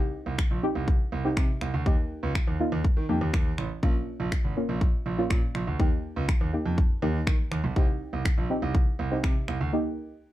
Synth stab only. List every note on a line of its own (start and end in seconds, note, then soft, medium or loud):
0.00 0.30 C4 medium
0.00 0.30 D#4 medium
0.00 0.30 G4 loud
0.63 0.97 C4 medium
0.63 0.97 D#4 medium
0.63 0.97 G4 loud
1.24 1.59 C4 medium
1.24 1.59 D#4 medium
1.24 1.59 G4 loud
1.86 2.27 A#3 medium
1.86 2.27 D#4 medium
1.86 2.27 G4 medium
2.60 2.87 A#3 medium
2.60 2.87 D#4 medium
2.60 2.87 F4 loud
3.09 3.50 A#3 medium
3.09 3.50 D#4 medium
3.09 3.50 G4 loud
3.83 4.24 A#3 medium
3.83 4.24 C#4 medium
3.83 4.24 F4 loud
4.56 4.91 A#3 medium
4.56 4.91 C#4 medium
4.56 4.91 F4 medium
5.18 5.52 A#3 medium
5.18 5.52 C#4 medium
5.18 5.52 F4 loud
5.79 6.20 A#3 medium
5.79 6.21 D#4 medium
5.79 6.21 G4 loud
6.53 6.81 A#3 medium
6.53 6.81 D#4 medium
6.53 6.81 G4 medium
7.02 7.43 A#3 medium
7.02 7.43 D#4 medium
7.02 7.44 G4 loud
7.76 8.17 C4 medium
7.76 8.17 D#4 medium
7.76 8.17 G4 loud
8.50 8.84 C4 medium
8.50 8.84 D#4 medium
8.50 8.84 G4 loud
9.11 9.46 C4 medium
9.11 9.46 D#4 medium
9.11 9.46 G4 medium
9.73 10.14 A#3 medium
9.73 10.14 D#4 medium
9.73 10.14 G4 loud